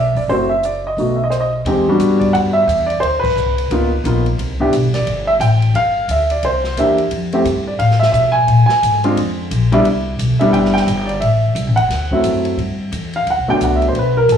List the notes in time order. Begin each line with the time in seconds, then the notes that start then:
Already playing: B1 E5
0.15 F1 D5, open hi-hat
0.28 F#1 A3 C4 E4 F#4 C5, open hi-hat
0.49 E5
0.63 D5, closed hi-hat
0.87 D#5
0.97 B1 A3 B3 D#4 F#4, open hi-hat
1.16 E5
1.24 D#5
1.30 C5, cross-stick, closed hi-hat
1.40 D#5
1.65 E2 G#3 C4 D#4 G4, ride
1.89 G3 B3 D4 F#4
2.00 G2, hi-hat pedal, ride
2.20 D5, kick, ride
2.33 F#2 F#5, ride
2.53 E5
2.68 E2, hi-hat pedal, ride
2.86 D5, ride
3.00 D2 C5, ride
3.20 B4, muted upright bass stroke
3.24 kick, crash
3.36 C2, hi-hat pedal
3.58 ride
3.70 C#2 A#3 B3 D#4 F4, ride
4.04 A#1 A#3 B3 D#4 F4, hi-hat pedal, ride
4.26 ride
4.38 C2, ride
4.60 B3 D4 E4 G4, kick
4.73 B1, hi-hat pedal, ride
4.84 G1
4.94 E1 D5, snare, ride
5.06 G1, ride
5.27 E5
5.40 A1 G5, hi-hat pedal, ride
5.62 ride
5.74 G1 F5, ride
6.08 D2 E5, hi-hat pedal, ride
6.30 D5, ride
6.43 C2 C5, ride
6.64 snare
6.77 E2 A#3 D4 E4 G4 E5, hi-hat pedal, ride
6.98 ride
7.11 F2, ride
7.32 A3 C4 E4 G4, ride
7.45 G2, hi-hat pedal, ride
7.67 D5
7.79 A2 F5, ride
7.91 snare
8.00 E5, snare
8.12 B2 E5, hi-hat pedal, ride
8.32 G#5
8.48 A#2, ride
8.66 G#5, muted upright bass stroke, snare
8.83 G#2, hi-hat pedal, ride
9.04 G#3 C4 D4 F4, ride
9.17 F2, ride
9.51 A#1, hi-hat pedal, ride
9.72 G3 B3 D4 E4, ride
9.85 C2, ride
10.19 B1, hi-hat pedal, ride
10.30 G1
10.39 E1 G3 B3 D4 E4 E5, ride
10.52 F#1 G5, ride
10.65 snare
10.74 G5, snare
10.87 G1, hi-hat pedal, ride
11.06 D5, ride
11.20 A1 E5, ride
11.55 C2, hi-hat pedal, ride
11.66 A1
11.76 F#1 F#5, ride
11.89 D2, snare, ride
12.11 F#3 A3 C4 E4, kick
12.24 F#2, hi-hat pedal, ride
12.45 ride
12.57 G2, ride
12.92 E2, hi-hat pedal, ride
13.13 F5, ride
13.26 D2, ride
13.30 F#5
13.38 B1
13.48 G1 F#3 A3 B3 D4 G5
13.60 C2 F#5, hi-hat pedal, ride
13.76 E5
13.82 ride
13.88 C5
13.95 B1, ride
13.99 B4
14.17 A#4
14.29 A1 A4, hi-hat pedal, ride